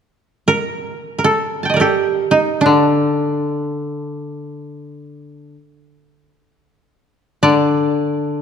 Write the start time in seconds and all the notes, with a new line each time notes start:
0.48 A#4
1.19 A#4
1.24 A4
1.63 G5 A5
1.70 D#5
1.74 A#4 D5
1.80 G4 A4
2.31 D#4
2.61 D4
2.66 D3
7.43 D3 D5
8.08 A#4